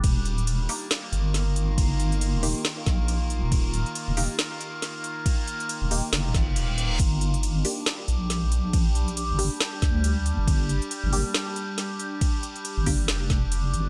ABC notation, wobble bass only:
X:1
M:4/4
L:1/16
Q:"Swing 16ths" 1/4=138
K:Gm
V:1 name="Wobble bass" clef=bass
E,,,6 z4 G,,,6- | G,,,4- G,,, E,,,2 z3 B,,,4- B,,, E,,,- | E,,,3 z2 E,,,2 z8 z | z4 z E,,,2 z F,,,2 G,,,2 E,,,4 |
G,,,6 z4 B,,,6- | B,,,4- B,,, G,,,2 z3 D,,4- D,, G,,,- | G,,,3 z2 G,,,2 z8 z | z4 z G,,,3 F,,,6 G,,,2 |]